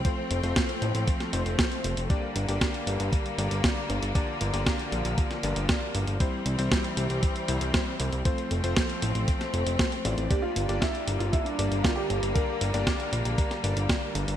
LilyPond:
<<
  \new Staff \with { instrumentName = "Grand piano" } { \time 4/4 \key g \dorian \tempo 4 = 117 r1 | r1 | r1 | r1 |
r1 | g'16 f'8. e'8. f'16 e'16 d'8. f'16 g'8. | bes'2.~ bes'8 r8 | }
  \new Staff \with { instrumentName = "Electric grand piano" } { \time 4/4 \key g \dorian <a c' f' c''>8. <a c' f' c''>4.~ <a c' f' c''>16 <a c' f' c''>4. | <bes d' g' d''>8. <bes d' g' d''>4.~ <bes d' g' d''>16 <bes d' g' d''>4. | <bes d' g' d''>8. <bes d' g' d''>4.~ <bes d' g' d''>16 <bes d' g' d''>4. | <g c' e' c''>8. <g c' e' c''>4.~ <g c' e' c''>16 <g c' e' c''>4. |
<a c' f' c''>8. <a c' f' c''>4.~ <a c' f' c''>16 r4 <a c' f' d''>8 | <bes d' g' d''>8. <bes d' g' d''>4.~ <bes d' g' d''>16 <bes d' g' d''>4. | <bes d' g' d''>8. <bes d' g' d''>4.~ <bes d' g' d''>16 <bes d' g' d''>4. | }
  \new Staff \with { instrumentName = "String section" } { \clef bass \time 4/4 \key g \dorian << { <f c'>1 | <d bes>1~ | <d bes>1 | <e c'>1 |
<f c'>1 | <d bes>1~ | <d bes>1 | } \\ { a1 | g1 | f1 | g1 |
a1 | g1~ | g1 | } >> }
  \new Staff \with { instrumentName = "Analog synth bass" } { \clef bass \time 4/4 \key g \dorian r8 f,,16 f,,16 r8 a,,16 a,,16 r8 f,,16 f,,16 r8 f,,16 f,,16 | r8 g,,16 g,,16 r8 g,,16 g,,16 r8 g,,16 g,,16 r8 g,,16 g,,16 | r8 g,,16 g,,16 r8 bes,,16 bes,,16 r8 g,,16 g,,16 r8 g,,16 g,,16 | r8 c,16 c,16 r8 c,16 c,16 r8 c,16 c,16 r8 c,16 c,16 |
r8 f,,16 f,,16 r8 a,,16 a,,16 r8 f,,16 f,,16 r8 a,,16 a,,16 | r8 g,,16 g,,16 r8 g,,16 g,,16 r8 g,,16 g,,16 r8 g,,16 g,,16 | r8 g,,16 g,,16 r8 bes,,16 bes,,16 r8 g,,16 g,,16 r8 g,,16 g,,16 | }
  \new DrumStaff \with { instrumentName = "Drums" } \drummode { \time 4/4 <hh bd>8 hh16 hh16 <hh bd sn>16 hh16 hh16 hh16 <hh bd>16 <hh sn>16 hh16 hh16 <hh bd sn>16 hh16 hh16 hh16 | <hh bd>8 hh16 hh16 <hh bd sn>16 hh16 hh16 hh16 <hh bd>16 hh16 hh16 hh16 <hh bd sn>8 hh16 hh16 | <hh bd>8 hh16 hh16 <hh bd sn>16 hh16 hh16 hh16 <hh bd>16 <hh sn>16 hh16 hh16 <hh bd sn>8 hh16 hh16 | <hh bd>8 hh16 hh16 <hh bd sn>16 hh16 hh16 hh16 <hh bd>16 hh16 hh16 hh16 <hh bd sn>8 hh16 hh16 |
<hh bd>16 hh16 hh16 hh16 <hh bd sn>16 hh16 hh16 hh16 <hh bd>16 <hh sn>16 hh16 hh16 <hh bd sn>16 hh16 hh16 hh16 | <hh bd>8 hh16 hh16 <hh bd sn>16 hh16 hh16 hh16 <hh bd>16 hh16 hh16 hh16 <hh bd sn>8 hh16 hh16 | <hh bd>8 hh16 hh16 <hh bd sn>16 hh16 hh16 hh16 <hh bd>16 <hh sn>16 hh16 hh16 <hh bd sn>8 hh16 hh16 | }
>>